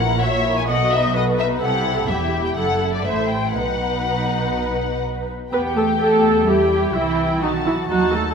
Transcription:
Already playing: double bass section A#1, cello section A#2, viola section A#4, violin section F#5
0.00 violin section E4 A#4
0.21 violin section F#4 C#5 E5, viola section C#5
0.45 violin section E4 A#4
0.57 violin section G#5
0.68 double bass section B1, cello section B2, violin section F#4 A4 F#5, viola section D#5
0.92 violin section D#4 B4 E5
1.15 violin section F#4 A4 D#5, viola section B4
1.39 violin section D#4 B4 E5
1.62 double bass section C2, cello section C3, violin section E4 G4 F#5, viola section A4
2.09 double bass section E1, cello section E2, violin section E4 G4 E5, viola section G4
2.46 violin section G5
2.57 double bass section F#1, cello section F#2, violin section E4 A4 F#5, viola section A4
2.94 violin section D5
3.06 double bass section A1, cello section A2, violin section E4 A4 E5, viola section C5
3.30 violin section G5
3.54 double bass section B1, cello section B2, violin section D#4 B4 F#5, viola section B4
5.52 double bass section E2, cello section B3, violin section G4 G5, viola section B4
5.77 cello section A3, viola section A4
6.00 cello section A3, viola section A4
6.47 cello section G3, violin section E4 G5, viola section G4
6.94 double bass section C2, cello section E3, viola section E4, violin section G5
7.42 double bass section B1, cello section D#3, viola section D#4, violin section F#4 A5
7.66 cello section E3, viola section E4
7.90 double bass section D#2, cello section F#3, violin section D#4 A5, viola section F#4
8.13 cello section A3, viola section A4
8.30 viola section A4

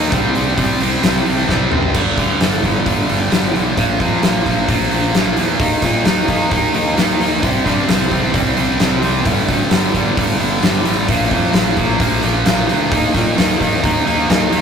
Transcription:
Already playing: fingered electric bass D#2, distorted electric guitar D#3 A#3 D#4
0.12 fingered electric bass C2, distorted electric guitar C3 G3 C4, kick, open hi-hat
0.35 fingered electric bass C2, distorted electric guitar C3 G3 C4, open hi-hat
0.57 fingered electric bass C2, distorted electric guitar C3 G3 C4, kick, open hi-hat
0.80 fingered electric bass C2, distorted electric guitar C3 G3 C4, open hi-hat
1.02 fingered electric bass C2, distorted electric guitar C3 G3 C4, snare, open hi-hat
1.26 fingered electric bass C2, distorted electric guitar C3 G3 C4, open hi-hat
1.48 fingered electric bass C2, distorted electric guitar C3 G3 C4, kick, snare
1.71 fingered electric bass F#1, distorted electric guitar C3 G3 C4, mid tom
1.83 floor tom
1.94 fingered electric bass G1, distorted electric guitar G2 D3 G3, kick, crash
2.17 fingered electric bass D2, distorted electric guitar G2 D3 G3, kick, open hi-hat
2.40 fingered electric bass G1, distorted electric guitar G2 D3 G3, snare, open hi-hat
2.63 fingered electric bass G1, distorted electric guitar G2 D3 G3, kick, open hi-hat
2.86 fingered electric bass G1, distorted electric guitar G2 D3 G3, kick, open hi-hat
3.09 fingered electric bass G1, distorted electric guitar G2 D3 G3, open hi-hat
3.32 fingered electric bass G1, distorted electric guitar G2 D3 G3, snare, open hi-hat
3.55 fingered electric bass B1, distorted electric guitar G2 D3 G3, open hi-hat
3.77 fingered electric bass A#1, distorted electric guitar A#2 F3 A#3, kick, open hi-hat
3.99 fingered electric bass F2, distorted electric guitar A#2 F3 A#3, kick, open hi-hat
4.23 fingered electric bass A#1, distorted electric guitar A#2 F3 A#3, snare, open hi-hat
4.45 fingered electric bass A#1, distorted electric guitar A#2 F3 A#3, kick, open hi-hat
4.68 fingered electric bass A#1, distorted electric guitar A#2 F3 A#3, kick, open hi-hat
4.91 fingered electric bass A#1, distorted electric guitar A#2 F3 A#3, open hi-hat
5.14 fingered electric bass A#1, distorted electric guitar A#2 F3 A#3, snare, open hi-hat
5.37 fingered electric bass E2, distorted electric guitar A#2 F3 A#3, open hi-hat
5.59 fingered electric bass D#2, distorted electric guitar D#3 A#3 D#4, kick, open hi-hat
5.82 fingered electric bass A#2, distorted electric guitar D#3 A#3 D#4, kick, snare, open hi-hat
6.05 fingered electric bass D#2, distorted electric guitar D#3 A#3 D#4, snare, open hi-hat
6.28 fingered electric bass D#2, distorted electric guitar D#3 A#3 D#4, kick, open hi-hat
6.51 fingered electric bass D#2, distorted electric guitar D#3 A#3 D#4, kick, open hi-hat
6.74 fingered electric bass D#2, distorted electric guitar D#3 A#3 D#4, open hi-hat
6.97 fingered electric bass D#2, distorted electric guitar D#3 A#3 D#4, snare, open hi-hat
7.19 fingered electric bass D#2, distorted electric guitar D#3 A#3 D#4, open hi-hat
7.43 fingered electric bass C2, distorted electric guitar C3 G3 C4, kick, open hi-hat
7.65 fingered electric bass G2, distorted electric guitar C3 G3 C4, kick, snare, open hi-hat
7.88 fingered electric bass C2, distorted electric guitar C3 G3 C4, snare, open hi-hat
8.11 fingered electric bass C2, distorted electric guitar C3 G3 C4, kick, open hi-hat
8.34 fingered electric bass C2, distorted electric guitar C3 G3 C4, kick, open hi-hat
8.57 fingered electric bass C2, distorted electric guitar C3 G3 C4, open hi-hat
8.80 fingered electric bass C2, distorted electric guitar C3 G3 C4, snare, open hi-hat
9.02 fingered electric bass C2, distorted electric guitar C3 G3 C4, open hi-hat
9.25 fingered electric bass G1, distorted electric guitar G2 D3 G3, kick, open hi-hat
9.48 fingered electric bass D2, distorted electric guitar G2 D3 G3, kick, open hi-hat
9.71 fingered electric bass G1, distorted electric guitar G2 D3 G3, snare, open hi-hat
9.94 fingered electric bass G1, distorted electric guitar G2 D3 G3, kick, open hi-hat
10.17 fingered electric bass G1, distorted electric guitar G2 D3 G3, kick, open hi-hat
10.40 fingered electric bass G1, distorted electric guitar G2 D3 G3, open hi-hat
10.62 fingered electric bass G1, distorted electric guitar G2 D3 G3, snare, open hi-hat
10.85 fingered electric bass A1, distorted electric guitar G2 D3 G3, open hi-hat
11.08 fingered electric bass A#1, distorted electric guitar A#2 F3 A#3, kick, open hi-hat
11.31 fingered electric bass F2, distorted electric guitar A#2 F3 A#3, kick, open hi-hat
11.54 fingered electric bass A#1, distorted electric guitar A#2 F3 A#3, snare, open hi-hat
11.76 fingered electric bass A#1, distorted electric guitar A#2 F3 A#3, kick, open hi-hat
11.99 fingered electric bass A#1, distorted electric guitar A#2 F3 A#3, kick, open hi-hat
12.22 fingered electric bass A#1, distorted electric guitar A#2 F3 A#3, open hi-hat
12.45 fingered electric bass A#1, distorted electric guitar A#2 F3 A#3, snare, open hi-hat
12.68 fingered electric bass D2, distorted electric guitar A#2 F3 A#3, open hi-hat
12.91 fingered electric bass D#2, distorted electric guitar D#3 A#3 D#4, kick, open hi-hat
13.13 fingered electric bass A#2, distorted electric guitar D#3 A#3 D#4, kick, snare, open hi-hat
13.37 fingered electric bass D#2, distorted electric guitar D#3 A#3 D#4, snare, open hi-hat
13.60 fingered electric bass D#2, distorted electric guitar D#3 A#3 D#4, kick, open hi-hat
13.82 fingered electric bass D#2, distorted electric guitar D#3 A#3 D#4, kick, open hi-hat
14.06 fingered electric bass D#2, distorted electric guitar D#3 A#3 D#4, open hi-hat
14.28 fingered electric bass D#2, distorted electric guitar D#3 A#3 D#4, snare, open hi-hat
14.51 fingered electric bass D#2, distorted electric guitar D#3 A#3 D#4, open hi-hat

